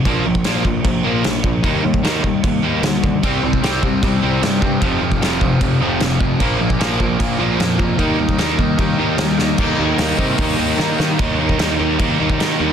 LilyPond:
<<
  \new Staff \with { instrumentName = "Distorted electric guitar" } { \clef bass \time 4/4 \key ees \major \tempo 4 = 151 <bes, f bes>8 <bes, f>8 <bes, f bes>8 <bes, f>8 <bes, f>8 <bes, f bes>8 <bes, f>8 <bes, f>8 | <ees g bes>8 <ees g>8 <ees g bes>8 <ees g>8 <ees g>8 <ees g bes>8 <ees g>8 <ees g>8 | <c g c'>8 <c g>8 <c g c'>8 <c g>8 <c g>8 <c g c'>8 <c g>8 <c g>8 | <f, c f>8 <f, c>8 <f, c f>8 <f, c>8 <f, c>8 <f, c f>8 <f, c>8 <f, c>8 |
<bes, f bes>8 <bes, f>8 <bes, f bes>8 <bes, f>8 <bes, f>8 <bes, f bes>8 <bes, f>8 <bes, f>8 | <ees g bes>8 <ees g>8 <ees g bes>8 <ees g>8 <ees g>8 <ees g bes>8 <ees g>8 <ees g>8 | <ees g bes ees'>8 <ees g bes ees'>8 <ees g bes ees'>8 <ees g bes ees'>8 <ees g bes ees'>8 <ees g bes ees'>8 <ees g bes ees'>8 <ees g bes ees'>8 | <ees g bes ees'>8 <ees g bes ees'>8 <ees g bes ees'>8 <ees g bes ees'>8 <ees g bes ees'>8 <ees g bes ees'>8 <ees g bes ees'>8 <ees g bes ees'>8 | }
  \new Staff \with { instrumentName = "Distorted electric guitar" } { \clef bass \time 4/4 \key ees \major <bes, f bes>8 <bes, f>8 <bes, f bes>8 <bes, f>8 <bes, f>8 <bes, f bes>8 <bes, f>8 <bes, f>8 | <ees bes ees'>8 <ees bes>8 <ees bes ees'>8 <ees bes>8 <ees bes>8 <ees bes ees'>8 <ees bes>8 <ees bes>8 | <c g c'>8 <c g>8 <c g c'>8 <c g>8 <c g>8 <c g c'>8 <c g>8 <c g>8 | <f, c f>8 <f, c>8 <f, c f>8 <f, c>8 <f, c>8 <f, c f>8 <f, c>8 <f, c>8 |
<bes, f bes>8 <bes, f>8 <bes, f bes>8 <bes, f>8 <bes, f>8 <bes, f bes>8 <bes, f>8 <bes, f>8 | <ees bes ees'>8 <ees bes>8 <ees bes ees'>8 <ees bes>8 <ees bes>8 <ees bes ees'>8 <ees bes>8 <ees bes>8 | <ees bes ees'>8 <ees bes ees'>8 <ees bes ees'>8 <ees bes ees'>8 <ees bes ees'>8 <ees bes ees'>8 <ees bes ees'>8 <ees bes ees'>8 | <ees bes ees'>8 <ees bes ees'>8 <ees bes ees'>8 <ees bes ees'>8 <ees bes ees'>8 <ees bes ees'>8 <ees bes ees'>8 <ees bes ees'>8 | }
  \new Staff \with { instrumentName = "Overdriven electric guitar" } { \clef bass \time 4/4 \key ees \major r1 | r1 | <c g c'>8 <c g c'>8 <c g c'>8 <c g c'>8 <c g c'>8 <c g c'>8 <c g c'>8 <c g c'>8 | <f, c f>8 <f, c f>8 <f, c f>8 <f, c f>8 <f, c f>8 <f, c f>8 <f, c f>8 <f, c f>8 |
<bes, f bes>8 <bes, f bes>8 <bes, f bes>8 <bes, f bes>8 <bes, f bes>8 <bes, f bes>8 <bes, f bes>8 <bes, f bes>8 | <ees bes ees'>8 <ees bes ees'>8 <ees bes ees'>8 <ees bes ees'>8 <ees bes ees'>8 <ees bes ees'>8 <ees bes ees'>8 <ees bes ees'>8 | <ees bes ees'>4. <ees bes ees'>4. <ees bes ees'>4 | r1 | }
  \new Staff \with { instrumentName = "Picked electric bass" } { \clef bass \time 4/4 \key ees \major bes,,8 bes,,8 bes,,8 bes,,8 bes,,8 bes,,8 bes,,4 | ees,8 ees,8 ees,8 ees,8 ees,8 ees,8 d,4 | c,8 c,8 c,8 c,8 c,8 c,8 g,4 | f,,8 f,,8 f,,8 f,,8 f,,8 f,,8 f,,4 |
bes,,8 bes,,8 bes,,8 bes,,8 bes,,8 bes,,8 f,4 | ees,8 ees,8 ees,8 ees,8 ees,8 ees,8 ees,4 | ees,8 ees,8 ees,8 c8 ees,8 ees,8 ees8 ees8 | ees,4 ees,8 ees,8 ees,8 ees,8 ees8 ees,8 | }
  \new DrumStaff \with { instrumentName = "Drums" } \drummode { \time 4/4 <cymc bd>8. bd16 <cymc sn>8 bd8 <cymc bd>4 <cymc sn>8 bd8 | <cymc bd>8. bd16 <cymc sn>8 bd8 <cymc bd>4 <cymc sn>8 bd8 | <cymc bd>8. bd16 <cymc sn>8 bd8 <cymc bd>4 <cymc sn>8 bd8 | <cymc bd>8. bd16 <cymc sn>8 bd8 <cymc bd>4 <cymc sn>8 bd8 |
<cymc bd>8. bd16 <cymc sn>8 bd8 <cymc bd>4 <cymc sn>8 bd8 | <cymc bd>8. bd16 <cymc sn>8 bd8 <cymc bd>4 <cymc sn>8 sn8 | <cymc bd>4 <hho sn>8 bd8 <hho bd>4 sn8 sn8 | <cymc bd>8. bd16 <cymc sn>4 <cymc bd>8. bd16 <cymc sn>4 | }
>>